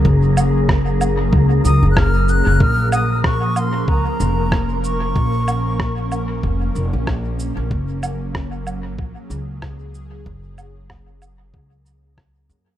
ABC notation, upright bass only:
X:1
M:4/4
L:1/16
Q:"Swing 16ths" 1/4=94
K:Gblyd
V:1 name="Upright bass" clef=bass
G,,,8 D,,2 D,, G,,,4 G,,, | B,,,8 D,, z F,,,6 | B,,,8 F,,,2 F,,, B,,,4 B,,, | G,,,8 B,,, z D,,6 |
G,,,8 D,,6 G,, z |]